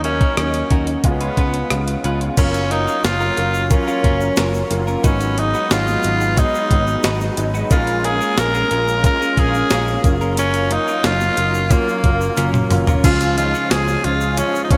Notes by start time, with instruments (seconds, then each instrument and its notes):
Already playing: fretless electric bass D#2, grand piano F#3 A#3 C#4 D#4
0.03 grand piano F#3 A#3 C#4 D#4, tenor saxophone C#4, clean electric guitar C#4 F#4 A#4, closed hi-hat
0.21 clean electric guitar C#4 F#4 A#4, kick, closed hi-hat
0.37 fretless electric bass D#2, grand piano F#3 A#3 C#4 D#4, tenor saxophone C#4, cross-stick, closed hi-hat
0.54 muted clean electric guitar stroke, closed hi-hat
0.70 fretless electric bass D#2, grand piano F#3 A#3 C#4 D#4, clean electric guitar C#4 F#4 A#4, kick, closed hi-hat
0.87 muted clean electric guitar stroke, closed hi-hat
1.04 fretless electric bass C#2, grand piano G#3 B3 C#4 F4, tenor saxophone B3, muted clean electric guitar stroke, kick, closed hi-hat
1.21 clean electric guitar C#4 F4 B4, closed hi-hat
1.37 fretless electric bass C#2, grand piano G#3 B3 C#4 F4, clean electric guitar C#4 F4 B4, kick, closed hi-hat
1.54 muted clean electric guitar stroke, closed hi-hat
1.70 fretless electric bass C#2, grand piano G#3 B3 C#4 F4, muted clean electric guitar stroke, cross-stick, closed hi-hat
1.88 muted clean electric guitar stroke, closed hi-hat
2.03 fretless electric bass C#2, grand piano G#3 B3 C#4 F4, clean electric guitar C#4 F4 B4, closed hi-hat
2.21 muted clean electric guitar stroke, closed hi-hat
2.37 fretless electric bass F#1, grand piano F#3 A#3 C#4 F4, analog synth pad F#3 C#4 F4 A#4, clean electric guitar C#4 F4 A#4, tenor saxophone C#4, kick, closed hi-hat, crash, shaker
2.54 closed hi-hat, shaker
2.70 grand piano F#3 A#3 C#4 F4, clean electric guitar C#4 F4 A#4, tenor saxophone D#4, closed hi-hat
2.87 clean electric guitar C#4 F4 A#4, shaker
3.04 fretless electric bass F#1, grand piano F#3 A#3 C#4 F4, tenor saxophone F4, muted clean electric guitar stroke, snare, closed hi-hat, shaker
3.20 clean electric guitar C#4 F4 A#4, shaker
3.36 fretless electric bass F#1, grand piano F#3 A#3 C#4 F4, clean electric guitar C#4 F4 A#4, closed hi-hat, shaker
3.54 muted clean electric guitar stroke, shaker
3.70 grand piano F#3 A#3 C#4 F4, tenor saxophone C#4, muted clean electric guitar stroke, kick, closed hi-hat, shaker
3.87 clean electric guitar C#4 F4 A#4, shaker
4.03 fretless electric bass F#1, grand piano F#3 A#3 C#4 F4, clean electric guitar C#4 F4 A#4, kick, closed hi-hat
4.21 muted clean electric guitar stroke, shaker
4.37 fretless electric bass F#1, grand piano F#3 A#3 C#4 F4, clean electric guitar C#4 F4 A#4, snare, closed hi-hat, shaker
4.54 muted clean electric guitar stroke, shaker
4.70 fretless electric bass F#1, grand piano F#3 A#3 C#4 F4, muted clean electric guitar stroke, closed hi-hat, shaker
4.87 clean electric guitar C#4 F4 A#4, shaker
5.03 fretless electric bass G#1, grand piano F#3 G#3 B3 D#4, analog synth pad F#3 G#3 D#4 B4, tenor saxophone C#4, clean electric guitar D#4 F#4 B4, kick, closed hi-hat, shaker
5.20 closed hi-hat, shaker
5.37 grand piano F#3 G#3 B3 D#4, tenor saxophone D#4, muted clean electric guitar stroke, closed hi-hat
5.54 clean electric guitar D#4 F#4 B4, shaker
5.71 fretless electric bass G#1, grand piano F#3 G#3 B3 F#4, tenor saxophone F4, snare, closed hi-hat, shaker
5.87 muted clean electric guitar stroke, shaker
6.03 fretless electric bass G#1, grand piano F#3 G#3 B3 D#4, closed hi-hat, shaker
6.21 muted clean electric guitar stroke, shaker
6.36 grand piano F#3 G#3 B3 D#4, tenor saxophone D#4, muted clean electric guitar stroke, kick, closed hi-hat, shaker
6.54 muted clean electric guitar stroke, shaker
6.70 fretless electric bass G#1, grand piano F#3 G#3 B3 D#4, kick, closed hi-hat
6.87 muted clean electric guitar stroke, shaker
7.03 fretless electric bass G#1, grand piano F#3 G#3 B3 D#4, clean electric guitar D#4 F#4 B4, snare, closed hi-hat, shaker
7.21 muted clean electric guitar stroke, shaker
7.37 fretless electric bass G#1, grand piano F#3 G#3 B3 D#4, muted clean electric guitar stroke, closed hi-hat, shaker
7.54 clean electric guitar D#4 F#4 B4, shaker
7.70 fretless electric bass A#1, grand piano G#3 A#3 C#4 F4, analog synth pad G#3 A#3 C#4, clean electric guitar C#4 G#4 A#4, tenor saxophone F4, kick, closed hi-hat, shaker
7.87 closed hi-hat, shaker
8.04 grand piano G#3 A#3 C#4 F4, clean electric guitar C#4 G#4 A#4, tenor saxophone G#4, closed hi-hat
8.20 clean electric guitar C#4 G#4 A#4, shaker
8.37 fretless electric bass A#1, grand piano G#3 A#3 C#4 G#4, tenor saxophone A#4, snare, closed hi-hat, shaker
8.54 clean electric guitar C#4 G#4 A#4, shaker
8.70 fretless electric bass A#1, grand piano G#3 A#3 C#4 F4, clean electric guitar C#4 G#4 A#4, closed hi-hat, shaker
8.88 shaker
9.03 grand piano G#3 A#3 C#4 F4, tenor saxophone A#4, muted clean electric guitar stroke, kick, closed hi-hat, shaker
9.21 clean electric guitar C#4 G#4 A#4, shaker
9.36 fretless electric bass A#1, grand piano G#3 A#3 C#4 F4, clean electric guitar C#4 G#4 A#4, tenor saxophone G#4, kick, closed hi-hat
9.54 muted clean electric guitar stroke, shaker
9.70 fretless electric bass A#1, grand piano G#3 A#3 C#4 F4, clean electric guitar C#4 G#4 A#4, snare, closed hi-hat, shaker
9.87 muted clean electric guitar stroke, shaker
10.03 fretless electric bass F#1, grand piano F#3 A#3 C#4 F4, analog synth pad F#3 F4 A#4, muted clean electric guitar stroke, kick, closed hi-hat, shaker
10.21 clean electric guitar C#4 F4 A#4, shaker
10.37 clean electric guitar C#4 F4 A#4, tenor saxophone C#4, closed hi-hat, shaker
10.54 closed hi-hat, shaker
10.69 grand piano F#3 A#3 C#4 F4, tenor saxophone D#4, muted clean electric guitar stroke, closed hi-hat
10.88 clean electric guitar C#4 F4 A#4, shaker
11.03 fretless electric bass F#1, grand piano F#3 A#3 C#4 D#4, tenor saxophone F4, muted clean electric guitar stroke, snare, closed hi-hat, shaker
11.21 muted clean electric guitar stroke, shaker
11.37 fretless electric bass F#1, grand piano F#3 A#3 C#4 F4, closed hi-hat, shaker
11.54 muted clean electric guitar stroke, shaker
11.70 grand piano F#3 A#3 C#4 F4, tenor saxophone A#3, muted clean electric guitar stroke, kick, closed hi-hat, shaker
11.87 muted clean electric guitar stroke, shaker
12.03 fretless electric bass F#1, grand piano F#3 A#3 C#4 F4, kick, closed hi-hat
12.21 muted clean electric guitar stroke, shaker
12.36 fretless electric bass F#1, grand piano F#3 A#3 C#4 F4, clean electric guitar C#4 F4 A#4, closed hi-hat, high tom, shaker
12.54 muted clean electric guitar stroke, mid tom, shaker
12.70 fretless electric bass F#1, grand piano F#3 A#3 C#4 F4, muted clean electric guitar stroke, mid tom, open hi-hat, shaker
12.87 clean electric guitar C#4 F4 A#4, floor tom, shaker
13.03 fretless electric bass C#2, analog synth pad C#3 C#4 F4 G#4, grand piano F3 G#3 C#4 F4, clean electric guitar C#4 F4 G#4, tenor saxophone F4, kick, closed hi-hat, crash, shaker
13.21 muted clean electric guitar stroke, closed hi-hat, shaker
13.37 grand piano F3 G#3 C#4 D#4, tenor saxophone F4, muted clean electric guitar stroke, closed hi-hat, shaker
13.54 clean electric guitar C#4 F4 G#4, shaker
13.71 fretless electric bass C#2, grand piano F3 G#3 C#4 F4, tenor saxophone G#4, snare, closed hi-hat, tambourine, shaker
13.87 muted clean electric guitar stroke, shaker
14.04 fretless electric bass C#2, grand piano F3 G#3 C#4 F4, tenor saxophone F4, closed hi-hat
14.21 muted clean electric guitar stroke, shaker
14.37 grand piano F3 G#3 C#4 F4, tenor saxophone C#4, muted clean electric guitar stroke, closed hi-hat, shaker
14.54 muted clean electric guitar stroke, shaker
14.64 tenor saxophone D#4
14.71 fretless electric bass C#2, grand piano F3 G#3 C#4 F4, tenor saxophone C#4, kick, closed hi-hat